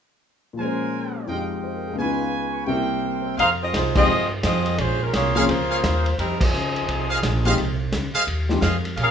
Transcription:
0.53 grand piano A#2 F3
0.58 grand piano G#3 C#4, trumpet section A#4 C5 G#5
0.65 grand piano C5
1.26 grand piano F2 F3 G#3 D#4, trumpet section D#5 F5 G5
1.31 grand piano G4
1.64 grand piano C5
1.76 grand piano A#4
1.88 grand piano G#4
1.93 grand piano C#2 C#3
1.99 grand piano B3 D#4, trumpet section B4 C#5 F5 G#5
2.04 grand piano F4
2.33 trumpet section B5
2.51 trumpet section C#6
2.67 grand piano C2 C3 A#3, trumpet section A#4 C5 E5 G5
2.71 grand piano E4 G4
3.03 grand piano A#4, trumpet section A#5
3.14 trumpet section C6
3.22 grand piano C5, trumpet section E6
3.37 upright bass F2, saxophone section D#4 G#4 C5 F5, trumpet section G#4 C5 D#5 F5, kick, ride
3.62 saxophone section C4 F4 G#4 D#5
3.73 upright bass C2, saxophone section G#3 D#4 F4 C5, kick, snare, hi-hat pedal, ride
3.95 grand piano F3 G#3 C4 D#4 G4, saxophone section C4 F4 G#4 D#5, kick, crash
4.08 upright bass G2
4.43 upright bass F2, saxophone section C4 F4 G#4 D#5, kick, snare, hi-hat pedal, ride
4.66 ride
4.78 upright bass A#1, saxophone section G#3 C#4 F4 C5, kick, ride
5.02 saxophone section G#3 C#4 F4 A#4
5.13 upright bass C2, saxophone section A#3 F4 G#4 C#5, kick, snare, hi-hat pedal, ride
5.35 grand piano F3 A#3 C4 C#4 G#4, trumpet section G#4 A#4 C#5 F5
5.48 upright bass C#2, saxophone section A#3 F4 G#4 C5, kick, ride
5.71 trumpet section G#4 A#4 C#5 F5
5.83 upright bass D#2, kick, snare, hi-hat pedal, ride
6.06 ride
6.18 upright bass F2, saxophone section G3 C4 D#4 A#4, kick, ride
6.41 saxophone section F3 C4 D#4 G#4, kick, crash
6.53 upright bass C#2, hi-hat pedal
6.76 ride
6.88 upright bass C2, kick, ride
7.10 trumpet section G#4 C5 D#5 F5
7.23 upright bass A#1, kick, snare, hi-hat pedal, ride
7.45 grand piano F3 G#3 C4 D#4 G4, trumpet section G#4 C5 D#5 F5, ride
7.58 upright bass C2, kick, ride
7.92 upright bass C#2, kick, snare, hi-hat pedal, ride
8.14 trumpet section G#4 C5 D#5 F5, muted upright bass stroke, ride
8.27 upright bass D#2, kick, ride
8.49 grand piano F3 G#3 C4 D#4 G4, snare
8.61 upright bass F2, trumpet section G#4 C5 D#5 F5, kick, snare, hi-hat pedal, ride
8.85 ride
8.97 upright bass A#2, trumpet section G#4 A#4 C#5 F5, kick, ride
9.01 saxophone section C#4 G#4 A#4 F5

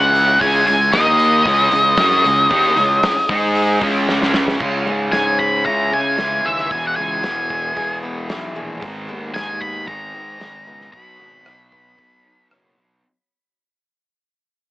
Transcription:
Already playing: fingered electric bass C#2, distorted electric guitar C#3 G#3 C#4, tonewheel organ E3 C#4 G#4 E5, lead electric guitar F#5
0.15 open hi-hat
0.41 fingered electric bass C#2, distorted electric guitar C#3 G#3 C#4, lead electric guitar G#5, kick, open hi-hat
0.67 fingered electric bass C#2, distorted electric guitar C#3 G#3, lead electric guitar G#5, open hi-hat
0.92 fingered electric bass D#2, distorted electric guitar D#3 A#3 D#4, tonewheel organ D#3 A#3 A#4 D#5, lead electric guitar D#5, snare, open hi-hat
1.19 open hi-hat
1.45 fingered electric bass C#2, distorted electric guitar C#3 G#3 C#4, tonewheel organ E3 C#4 G#4 C#5, kick, open hi-hat
1.71 fingered electric bass C#2, distorted electric guitar C#3 G#3, open hi-hat
1.97 fingered electric bass F#2, distorted electric guitar F#3 C#4 F#4, snare, open hi-hat
2.24 fingered electric bass C#2, distorted electric guitar C#3 G#3, open hi-hat
2.50 fingered electric bass D#2, distorted electric guitar D#3 A#3 D#4, kick, open hi-hat
2.77 fingered electric bass C#2, distorted electric guitar C#3 G#3, open hi-hat
3.03 snare, open hi-hat
3.28 fingered electric bass G#2, tonewheel organ D#3 G#3 D#5, distorted electric guitar G#3 D#4 G#4, kick, open hi-hat
3.55 open hi-hat
3.81 fingered electric bass C#2, distorted electric guitar C#3 G#3 C#4, tonewheel organ E3 C#4 E5, kick, open hi-hat
4.09 snare
4.23 snare
4.34 snare
4.48 snare
4.60 fingered electric bass C#2, distorted electric guitar C#3 G#3, steel-string acoustic guitar C#3, kick, crash
4.64 distorted electric guitar C#4
4.86 fingered electric bass G#2, steel-string acoustic guitar G#3
5.12 fingered electric bass G#2, steel-string acoustic guitar C#4, lead electric guitar G#5, snare, open hi-hat
5.39 steel-string acoustic guitar G#3, lead electric guitar B5, kick
5.66 fingered electric bass C#2, distorted electric guitar C#3 G#3 C#4, steel-string acoustic guitar E4, lead electric guitar A#5, kick, open hi-hat
5.91 fingered electric bass C#3, steel-string acoustic guitar C#4, lead electric guitar G#5
6.18 fingered electric bass C#2, steel-string acoustic guitar E3, snare, open hi-hat
6.45 fingered electric bass D#2, steel-string acoustic guitar G#3, lead electric guitar E5
6.58 snare
6.70 fingered electric bass E1, distorted electric guitar E2 B2 E3, steel-string acoustic guitar E2, lead electric guitar G#5, kick, open hi-hat
6.87 lead electric guitar F#5
6.96 fingered electric bass C#2, steel-string acoustic guitar G#3, lead electric guitar G#5
7.24 fingered electric bass E1, steel-string acoustic guitar B3, snare, open hi-hat
7.50 steel-string acoustic guitar G#3, kick
7.75 fingered electric bass E1, distorted electric guitar E2 B2 E3, steel-string acoustic guitar G#4, kick, open hi-hat
8.03 steel-string acoustic guitar B3
8.29 fingered electric bass B1, steel-string acoustic guitar E3, snare, open hi-hat
8.56 fingered electric bass A#1, steel-string acoustic guitar G#3
8.82 fingered electric bass G#1, distorted electric guitar G#2 D#3 G#3, steel-string acoustic guitar G#2, kick, open hi-hat
9.09 fingered electric bass D#2, steel-string acoustic guitar B3
9.34 fingered electric bass D#2, steel-string acoustic guitar D#4, lead electric guitar G#5, snare, open hi-hat
9.61 steel-string acoustic guitar B3, lead electric guitar B5, kick
9.87 fingered electric bass G#1, distorted electric guitar G#2 D#3 G#3, steel-string acoustic guitar G#4, lead electric guitar A#5, kick, open hi-hat
10.14 fingered electric bass G#2, steel-string acoustic guitar D#4
10.40 fingered electric bass G#1, steel-string acoustic guitar G#3, snare, open hi-hat
10.67 fingered electric bass C#2, steel-string acoustic guitar B3
10.81 snare
10.92 fingered electric bass B1, distorted electric guitar B2 F#3, steel-string acoustic guitar B2, lead electric guitar B5, kick, open hi-hat
10.97 distorted electric guitar B3
11.19 fingered electric bass G#1, steel-string acoustic guitar B3
11.46 fingered electric bass B1, steel-string acoustic guitar D#4, cross-stick, open hi-hat
11.72 steel-string acoustic guitar B3, kick
11.98 fingered electric bass B1, distorted electric guitar B2 F#3, steel-string acoustic guitar B4, kick, open hi-hat
12.02 distorted electric guitar B3
12.25 steel-string acoustic guitar D#4
12.51 fingered electric bass F#1, steel-string acoustic guitar F#3, cross-stick, open hi-hat
12.79 fingered electric bass B1, steel-string acoustic guitar B3

